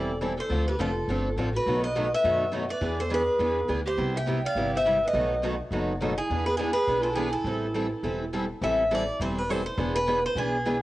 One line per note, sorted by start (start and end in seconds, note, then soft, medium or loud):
0.00 0.38 E1 medium
0.00 0.11 E3 medium
0.00 0.11 G3 medium
0.00 0.11 C4 medium
0.00 0.11 E4 medium
0.00 0.11 A4 medium
0.00 0.17 A4 medium
0.00 0.18 D5 medium
0.21 0.32 E3 medium
0.21 0.32 G3 medium
0.21 0.32 C4 medium
0.21 0.32 E4 medium
0.21 0.32 A4 medium
0.38 0.65 A4 medium
0.38 0.67 C5 medium
0.49 0.73 D2 medium
0.49 0.69 D3 medium
0.49 0.69 F3 medium
0.49 0.70 A3 medium
0.49 0.69 C4 medium
0.49 0.69 D4 medium
0.49 0.70 F4 medium
0.49 0.69 A4 medium
0.68 0.78 G4 medium
0.68 0.78 B4 medium
0.78 1.04 F1 medium
0.78 0.90 D3 medium
0.78 0.90 F3 medium
0.78 0.90 A3 medium
0.78 0.90 C4 medium
0.78 0.90 D4 medium
0.78 1.32 F4 medium
0.78 0.90 F4 medium
0.78 0.90 A4 medium
0.78 1.34 A4 medium
1.08 1.32 G1 medium
1.08 1.28 D3 medium
1.08 1.28 F3 medium
1.08 1.28 A3 medium
1.08 1.28 C4 medium
1.08 1.28 D4 medium
1.08 1.28 F4 medium
1.08 1.28 A4 medium
1.36 1.61 A1 medium
1.36 1.48 D3 medium
1.36 1.48 F3 medium
1.36 1.48 A3 medium
1.36 1.48 C4 medium
1.36 1.48 D4 medium
1.36 1.48 F4 medium
1.36 1.49 A4 medium
1.53 1.81 F#4 medium
1.53 1.82 B4 medium
1.66 2.12 B1 medium
1.66 1.86 B2 medium
1.66 1.86 D#3 medium
1.66 1.86 F#3 medium
1.66 1.86 A3 medium
1.66 1.86 B3 medium
1.66 1.86 D#4 medium
1.66 1.86 F#4 medium
1.66 1.86 A4 medium
1.83 2.10 B4 medium
1.83 2.13 D#5 medium
1.96 2.06 B2 medium
1.96 2.06 D#3 medium
1.96 2.06 F#3 medium
1.96 2.06 A3 medium
1.96 2.07 B3 medium
1.96 2.07 D#4 medium
1.96 2.06 F#4 medium
1.96 2.07 A4 medium
2.13 2.50 B4 medium
2.13 2.51 E5 medium
2.24 2.70 F#2 medium
2.24 2.43 B2 medium
2.24 2.44 D#3 medium
2.24 2.44 F#3 medium
2.24 2.44 A3 medium
2.24 2.44 B3 medium
2.24 2.44 D#4 medium
2.24 2.44 F#4 medium
2.24 2.44 A4 medium
2.51 2.63 B2 medium
2.51 2.63 D#3 medium
2.51 2.64 F#3 medium
2.51 2.64 A3 medium
2.51 2.63 B3 medium
2.51 2.63 D#4 medium
2.51 2.64 F#4 medium
2.51 2.64 A4 medium
2.69 2.97 B4 medium
2.69 3.00 D5 medium
2.81 3.28 E2 medium
2.81 3.01 E3 medium
2.81 3.01 B3 medium
2.81 3.01 D4 medium
2.81 3.01 G#4 medium
2.81 3.01 B4 medium
2.98 3.13 A4 medium
2.98 3.10 C5 medium
3.10 3.21 E3 medium
3.10 3.22 B3 medium
3.10 3.21 D4 medium
3.10 3.21 G#4 medium
3.10 3.69 G#4 medium
3.10 3.22 B4 medium
3.10 3.70 B4 medium
3.39 3.64 E2 medium
3.39 3.59 E3 medium
3.39 3.59 B3 medium
3.39 3.59 D4 medium
3.39 3.59 G#4 medium
3.39 3.59 B4 medium
3.68 3.93 D2 medium
3.68 3.79 E3 medium
3.68 3.79 B3 medium
3.68 3.80 D4 medium
3.68 3.80 G#4 medium
3.68 3.80 B4 medium
3.86 4.13 G4 medium
3.86 4.17 C5 medium
3.97 4.44 C2 medium
3.97 4.17 C3 medium
3.97 4.17 G3 medium
3.97 4.17 B3 medium
3.97 4.17 E4 medium
3.97 4.18 G4 medium
4.15 4.42 E5 medium
4.15 4.43 G5 loud
4.27 4.38 C3 medium
4.27 4.38 G3 medium
4.27 4.38 B3 medium
4.27 4.38 E4 medium
4.27 4.38 G4 medium
4.45 4.72 D5 medium
4.45 4.75 F5 medium
4.55 5.02 G1 medium
4.55 4.76 C3 medium
4.55 4.76 G3 medium
4.55 4.76 B3 medium
4.55 4.76 E4 medium
4.55 4.76 G4 medium
4.75 5.01 C5 medium
4.75 5.05 E5 medium
4.86 4.96 C3 medium
4.86 4.97 G3 medium
4.86 4.96 B3 medium
4.86 4.96 E4 medium
4.86 4.97 G4 medium
5.03 5.41 B4 medium
5.08 5.43 D#5 medium
5.13 5.60 B1 medium
5.13 5.33 B2 medium
5.13 5.34 D#3 medium
5.13 5.34 F#3 medium
5.13 5.33 A3 medium
5.13 5.34 B3 medium
5.13 5.34 D#4 medium
5.13 5.34 F#4 medium
5.13 5.34 A4 medium
5.43 5.54 B2 medium
5.43 5.54 D#3 medium
5.43 5.54 F#3 medium
5.43 5.54 A3 medium
5.43 5.54 B3 medium
5.43 5.54 D#4 medium
5.43 5.54 F#4 medium
5.43 5.55 A4 medium
5.71 6.18 F#1 medium
5.71 5.91 B2 medium
5.71 5.91 D#3 medium
5.71 5.92 F#3 medium
5.71 5.92 A3 medium
5.71 5.92 B3 medium
5.71 5.92 D#4 medium
5.71 5.92 F#4 medium
5.71 5.92 A4 medium
6.01 6.12 B2 medium
6.01 6.12 D#3 medium
6.01 6.12 F#3 medium
6.01 6.12 A3 medium
6.01 6.12 B3 medium
6.01 6.12 D#4 medium
6.01 6.12 F#4 medium
6.01 6.12 A4 medium
6.17 6.44 E4 medium
6.17 6.46 G#4 medium
6.30 6.76 E2 medium
6.30 6.50 E3 medium
6.30 6.50 B3 medium
6.30 6.50 D4 medium
6.30 6.50 G#4 medium
6.30 6.50 B4 medium
6.46 6.57 G#4 medium
6.46 6.57 B4 medium
6.57 6.70 E3 medium
6.57 6.70 B3 medium
6.57 6.70 D4 medium
6.57 6.73 E4 medium
6.57 6.73 G#4 medium
6.57 6.70 G#4 medium
6.57 6.70 B4 medium
6.73 7.00 G#4 medium
6.73 7.02 B4 loud
6.87 7.34 B1 medium
6.87 7.07 E3 medium
6.87 7.08 B3 medium
6.87 7.08 D4 medium
6.87 7.08 G#4 medium
6.87 7.08 B4 medium
7.01 7.12 F4 medium
7.01 7.15 A4 medium
7.12 7.27 E3 medium
7.12 7.29 E4 medium
7.12 7.32 G#4 medium
7.17 7.28 B3 medium
7.17 7.28 D4 medium
7.17 7.28 G#4 medium
7.17 7.28 B4 medium
7.29 8.44 E4 medium
7.29 8.46 A4 medium
7.44 7.92 A1 medium
7.44 7.66 E3 medium
7.44 7.66 G3 medium
7.44 7.66 C4 medium
7.44 7.66 E4 medium
7.44 7.66 A4 medium
7.74 7.86 E3 medium
7.74 7.86 G3 medium
7.74 7.86 C4 medium
7.74 7.86 E4 medium
7.74 7.86 A4 medium
8.03 8.50 E1 medium
8.03 8.23 E3 medium
8.03 8.23 G3 medium
8.03 8.24 C4 medium
8.03 8.24 E4 medium
8.03 8.24 A4 medium
8.33 8.44 E3 medium
8.33 8.44 G3 medium
8.33 8.44 C4 medium
8.33 8.45 E4 medium
8.33 8.45 A4 medium
8.61 9.08 A1 medium
8.61 8.82 E3 medium
8.61 8.83 G3 medium
8.61 8.83 C4 medium
8.61 8.82 E4 medium
8.61 8.83 A4 medium
8.61 8.90 E5 medium
8.91 9.02 E3 medium
8.91 9.02 G3 medium
8.91 9.02 C4 medium
8.91 9.02 E4 medium
8.91 9.02 A4 medium
8.91 9.20 D5 medium
9.20 9.66 E1 medium
9.20 9.40 E3 medium
9.20 9.40 G3 medium
9.20 9.40 C4 medium
9.20 9.40 E4 medium
9.20 9.41 A4 medium
9.20 9.38 C5 medium
9.38 9.50 B4 medium
9.49 9.60 E3 medium
9.49 9.60 G3 medium
9.49 9.61 C4 medium
9.49 9.61 E4 medium
9.49 9.61 A4 medium
9.49 9.65 C5 medium
9.66 9.93 C5 medium
9.77 10.24 E1 medium
9.77 9.97 E3 medium
9.77 9.97 B3 medium
9.77 9.97 D4 medium
9.77 9.98 G#4 medium
9.77 9.98 B4 medium
9.95 10.22 B4 medium
10.08 10.18 E3 medium
10.08 10.18 B3 medium
10.08 10.19 D4 medium
10.08 10.19 G#4 medium
10.08 10.19 B4 medium
10.26 10.37 C5 medium
10.35 10.82 B1 medium
10.35 10.56 E3 medium
10.35 10.56 B3 medium
10.35 10.57 D4 medium
10.35 10.80 G#4 medium
10.35 10.57 G#4 medium
10.35 10.57 B4 medium
10.66 10.76 E3 medium
10.66 10.77 B3 medium
10.66 10.76 D4 medium
10.66 10.77 G#4 medium
10.66 10.77 B4 medium